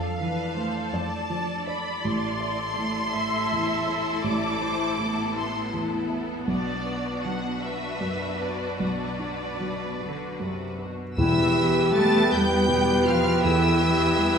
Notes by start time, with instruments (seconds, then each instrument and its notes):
Already playing: cello section F2, felt piano F2 D5, violin section D4 A4 F5, viola section A4
0.19 felt piano E3, violin section D4 A4, viola section B4
0.56 felt piano A3, viola section C5
0.92 cello section F2, viola section D5, felt piano D5, violin section A5
1.30 felt piano F3, violin section D4 A4
1.67 felt piano D5, violin section B5
2.04 felt piano A1, cello section A2, violin section E4 A4 C6
2.40 felt piano E5
2.77 felt piano A3
3.14 felt piano E5, viola section E5
3.52 felt piano E2
3.88 felt piano E5
4.24 felt piano A1, viola section D5, violin section D6
4.61 felt piano E4, viola section C5
4.99 felt piano A3, viola section B3
5.36 felt piano E5, violin section C6
5.73 felt piano E2
6.10 felt piano E5
6.47 felt piano B1, cello section B2, violin section D4 F#4 D5
6.86 felt piano B4
7.23 felt piano F#3, violin section F#5
7.61 viola section B4, felt piano B4, violin section E5
8.00 felt piano F#2
8.41 felt piano B4, violin section D5
8.79 felt piano B1, violin section B4, viola section D5
9.19 felt piano D4
9.60 felt piano F#3
9.99 cello section D3, felt piano B4
10.40 felt piano F#2, cello section C3
10.79 cello section B2, felt piano B4
11.17 double bass section E2, timpani E2, felt piano E2, cello section E3, clarinet E4, french horn section G4, cor anglais B4, violin section E5 E6, flute G5
11.55 viola section B3 G4, felt piano B4
11.93 felt piano G3, cello section A3, clarinet A4, violin section A5 A6
12.30 double bass section E2, cello section G3, clarinet G4, french horn section B4, felt piano B4, violin section G5 G6
12.68 felt piano B2, viola section B3 G4
13.05 cello section F3, clarinet F4, felt piano B4, violin section F5 F6
13.43 double bass section E2, felt piano E2, cello section E3, clarinet E4, french horn section A4, violin section E5 E6
13.80 viola section B3 G4, felt piano E4, french horn section G4
14.16 felt piano G3, french horn section B4